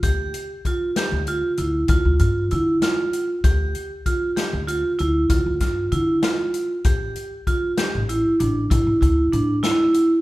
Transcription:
<<
  \new Staff \with { instrumentName = "Vibraphone" } { \time 11/8 \key d \minor \tempo 4 = 97 g'4 f'8 g'8 f'8 e'8 f'8 f'8 e'8 f'4 | g'4 f'8 g'8 f'8 e'8 f'8 f'8 e'8 f'4 | g'4 f'8 g'8 e'8 d'8 e'8 e'8 d'8 e'4 | }
  \new Staff \with { instrumentName = "Upright bass" } { \clef bass \time 11/8 \key d \minor d,8 r4 r16 d,8 r16 d,8 d,16 d,16 g,8 d8 r4 | d,8 r4 r16 d,8 r16 d,8 d,16 d,16 g,8 d8 r4 | a,,8 r4 r16 a,,8 r16 a,,8 a,,16 a,,16 d,8 a,8 r4 | }
  \new DrumStaff \with { instrumentName = "Drums" } \drummode { \time 11/8 <hh bd>8 hh8 <hh bd>8 <hh sn>8 hh8 hh8 <hh bd>8 <hh bd>8 hh8 <hh sn>8 hh8 | <hh bd>8 hh8 <hh bd>8 <hh sn>8 hh8 hh8 <hh bd>8 <hh bd sn>8 hh8 <hh sn>8 hh8 | <hh bd>8 hh8 <hh bd>8 <hh sn>8 hh8 hh8 <hh bd>8 <hh bd>8 hh8 <hh sn>8 hh8 | }
>>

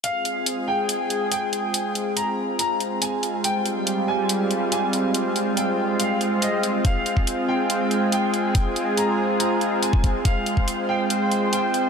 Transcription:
<<
  \new Staff \with { instrumentName = "Grand piano" } { \time 4/4 \key f \minor \tempo 4 = 141 f''4. g''4. g''4~ | g''4 bes''8 r8 bes''8 r8 aes''8 r8 | g''4. aes''4. aes''4~ | aes''4 g''8 r8 f''8 r8 ees''8 r8 |
f''4. g''4. g''4~ | g''4 bes''8 r8 bes''8 r8 aes''8 r8 | f''4. g''4. g''4 | }
  \new Staff \with { instrumentName = "Analog synth pad" } { \time 4/4 \key f \minor << { aes'1~ | aes'1 | g1~ | g1 |
aes'1~ | aes'1 | c''1 | } \\ { <aes c' f'>1~ | <aes c' f'>1~ | <aes c' f'>1~ | <aes c' f'>1~ |
<aes c' f'>1~ | <aes c' f'>1~ | <aes c' f'>1 | } >> }
  \new DrumStaff \with { instrumentName = "Drums" } \drummode { \time 4/4 hh8 hh8 hh4 hh8 hh8 hh8 hh8 | hh8 hh8 hh4 hh8 hh8 hh8 hh8 | hh8 hh8 hh4 hh8 hh8 hh8 hh8 | hh8 hh8 hh4 hh8 hh8 hh8 hh8 |
<hh bd>8 hh16 bd16 hh4 hh8 hh8 hh8 hh8 | <hh bd>8 hh8 hh4 hh8 hh8 hh16 bd16 <hh bd>8 | <hh bd>8 hh16 bd16 hh4 hh8 hh8 hh8 hh8 | }
>>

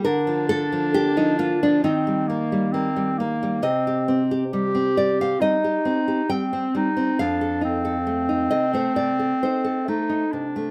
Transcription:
<<
  \new Staff \with { instrumentName = "Clarinet" } { \time 4/4 \key c \dorian \tempo 4 = 67 d'2 c'8 bes8 c'8 bes8 | c'8 r8 g'4 ees'4 c'8 ees'8 | d'8 c'2~ c'8 ees'8 d'8 | }
  \new Staff \with { instrumentName = "Nylon-string guitar" } { \time 4/4 \key c \dorian << { bes'8 a'8 g'16 ees'16 f'16 d'16 ees'4. r8 | ees''4. d''16 f''16 ees''4 g''4 | f''4. ees''16 c''16 d''8 c''4 r8 | } \\ { d16 f16 bes16 f16 bes16 f16 bes16 f16 ees16 g16 bes16 g16 bes16 g16 bes16 g16 | c16 g'16 c'16 g'16 g16 c'16 g16 c'16 g16 g'16 c'16 g'16 g16 c'16 g16 c'16 | f,16 a'16 ees'16 a'16 a16 ees'16 c16 a16 c16 a'16 ees'16 a'16 a16 ees'16 c16 a16 | } >> }
>>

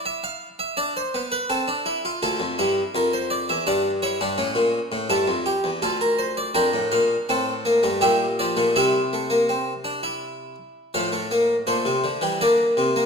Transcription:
<<
  \new Staff \with { instrumentName = "Harpsichord" } { \time 3/4 \key d \minor \tempo 4 = 83 << { e''16 f''8 e''16 d''16 c''8 b'16 a'4 | a'4 bes'16 c''16 d''16 e''16 d''8 cis''8~ | cis''4 a'8 g'8 a'16 bes'16 c''16 d''16 | \key f \major g''8 f''4. e''8 d''8 |
e''2~ e''8 r8 | f''4 c''4 d''4 | } \\ { e'4 d'8 b8 c'16 d'16 e'16 f'16 | f'8 e'4. d'8 e'16 d'16 | cis'4 e'4 f'4 | bes'4 a'4 g'4 |
e'2~ e'8 r8 | r2. | } >> }
  \new Staff \with { instrumentName = "Harpsichord" } { \clef bass \time 3/4 \key d \minor << { r2. | r2. | r2. | \key f \major d'4 c'8 bes16 a16 g8 f16 a16 |
g8 a16 bes16 c'8 d'16 e'4~ e'16 | f16 a16 bes8 a8. g16 bes8. bes16 | } \\ { r2. | d,16 f,16 g,8 f,8. e,16 g,8. g,16 | a,16 bes,8 a,16 g,16 f,8 e,16 d,4 | f,16 a,16 bes,8 a,8. g,16 bes,8. bes,16 |
c2~ c8 r8 | a,4 bes,16 c16 d16 e16 d8 c8 | } >> }
>>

